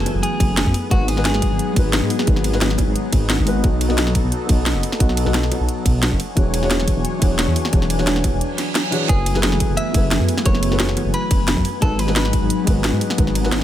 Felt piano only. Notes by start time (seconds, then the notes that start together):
Already playing: F#3 E4 G#4 A4 B4
0.90 G#3 D#4 F#4 B4
1.16 G#3 D#4 F#4 B4
1.73 G#3 D#4
1.77 F#4 B4
2.26 G#3 D#4 F#4 B4
2.52 G#3 D#4 F#4 B4
3.45 G#3 D#4 F#4 B4
3.63 B3 F#4 A4 D#5
3.89 B3 F#4 A4 D#5
4.46 B3 F#4 A4
4.52 D#5
4.99 B3 F#4 A4 D#5
5.25 B3 F#4 A4 D#5
6.35 E3 D4 F#4 G#4 C#5
6.61 E3 D4 F#4 G#4 C#5
7.19 E3 D4 F#4
7.24 G#4 C#5
7.72 E3 D4 F#4 G#4 C#5
7.98 E3 D4 F#4 G#4 C#5
8.91 E3 D4 F#4 G#4 C#5
9.08 F#3 E4 G#4 A4 B4
9.34 F#3 E4 G#4 A4 B4
9.91 F#3 E4 G#4
9.96 A4 B4
10.44 F#3 E4 G#4 A4 B4
10.70 F#3 E4 G#4 A4 B4
11.81 G#3 D#4 F#4 B4
12.07 G#3 D#4 F#4 B4
12.64 G#3 D#4 F#4
12.70 B4
13.17 G#3 D#4 F#4 B4
13.43 G#3 D#4 F#4 B4